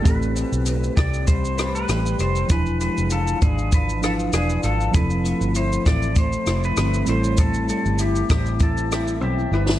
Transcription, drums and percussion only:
0.05 kick, closed hi-hat, shaker
0.22 shaker
0.36 closed hi-hat, shaker
0.53 shaker
0.66 closed hi-hat, shaker
0.83 shaker
0.97 kick, cross-stick, closed hi-hat, shaker
1.14 shaker
1.27 kick, closed hi-hat, shaker
1.45 shaker
1.58 cross-stick, closed hi-hat, shaker
1.75 shaker
1.89 cross-stick, closed hi-hat, shaker
2.06 shaker
2.19 closed hi-hat, shaker
2.36 shaker
2.49 kick, closed hi-hat, shaker
2.66 shaker
2.81 closed hi-hat, shaker
2.97 shaker
3.10 closed hi-hat, shaker
3.27 shaker
3.42 kick, closed hi-hat, shaker
3.58 shaker
3.72 kick, closed hi-hat, shaker
3.89 shaker
4.03 cross-stick, closed hi-hat, shaker
4.19 shaker
4.33 cross-stick, closed hi-hat, shaker
4.50 shaker
4.63 closed hi-hat, shaker
4.80 shaker
4.94 kick, closed hi-hat, shaker
5.10 shaker
5.25 closed hi-hat, shaker
5.41 shaker
5.55 closed hi-hat, shaker
5.73 shaker
5.86 kick, cross-stick, closed hi-hat, shaker
6.02 shaker
6.16 kick, closed hi-hat, shaker
6.33 shaker
6.46 cross-stick, closed hi-hat, shaker
6.64 shaker
6.77 cross-stick, closed hi-hat, shaker
6.94 shaker
7.06 closed hi-hat, shaker
7.24 shaker
7.37 kick, closed hi-hat, shaker
7.54 shaker
7.69 closed hi-hat, shaker
7.85 shaker
7.99 closed hi-hat, shaker
8.16 shaker
8.30 kick, cross-stick, closed hi-hat, shaker
8.46 shaker
8.59 kick, closed hi-hat, shaker
8.77 shaker
8.92 cross-stick, closed hi-hat, shaker
9.07 shaker
9.69 snare

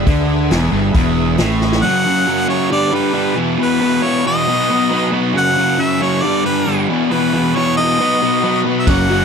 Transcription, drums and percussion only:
0.07 kick, open hi-hat
0.51 snare, open hi-hat
0.94 kick, open hi-hat
1.38 snare, open hi-hat
1.61 snare
1.72 snare
8.87 kick, crash

